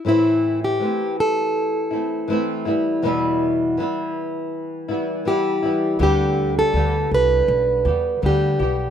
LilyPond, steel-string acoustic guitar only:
\new Staff \with { instrumentName = "Steel-string acoustic guitar" } { \time 4/4 \key a \minor \tempo 4 = 81 e'8. g'8. a'2 r8 | r2. g'4 | g'8. a'8. b'4. g'4 | }